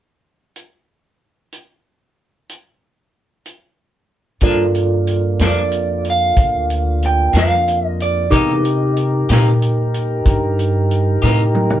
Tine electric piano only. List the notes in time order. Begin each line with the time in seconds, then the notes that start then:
4.43 F4 A4 A#4 D5
8.30 D#4 G4 A#4 D6